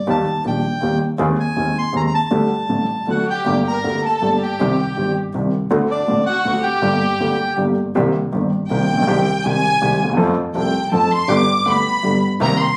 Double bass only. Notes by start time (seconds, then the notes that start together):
0.07 D#2
0.45 A#1
0.82 D#2
1.19 D#2
1.57 D#2
1.94 D#2
2.31 D2
2.69 A1
3.07 D2
3.45 G1
3.84 D2
4.22 G1
4.60 C2
4.97 G1
5.34 C2
5.71 D2
6.08 A1
6.45 D2
6.83 G1
7.19 D2
7.58 G1
7.96 C2
8.34 G1
8.71 C2
8.89 A#1
9.07 C2
9.44 C2
9.82 C2
10.01 D#2
10.19 F2
10.55 C2
10.92 F2
11.29 G1
11.66 D2
12.04 G1
12.41 C2